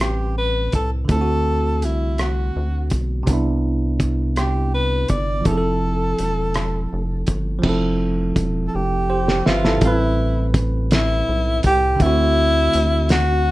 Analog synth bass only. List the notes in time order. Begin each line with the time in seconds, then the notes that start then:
Already playing: A1
0.74 C2
1.10 D2
1.83 C2
2.56 D2
2.92 B1
3.28 C2
5.11 G1
5.47 F1
6.20 E1
6.93 F1
7.29 G1
7.65 F1
8.37 E1
8.75 F1
9.48 G1
9.83 A1
11.29 B1
11.65 C2
12.01 D2
12.75 D2